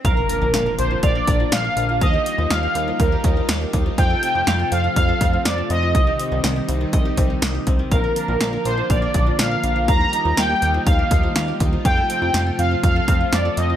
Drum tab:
HH |xxxxxxxx|xxxxxxxx|xxxxxxxx|xxxxxxxx|
SD |--o---o-|--o---o-|--o---o-|--o---o-|
BD |o---oo--|o---oo-o|o---oo--|o---oo-o|

HH |xxxxxxxx|xxxxxxxx|xxxxxxxx|
SD |--o---o-|--o---o-|--o---o-|
BD |o---oo--|o---oo-o|o---oo--|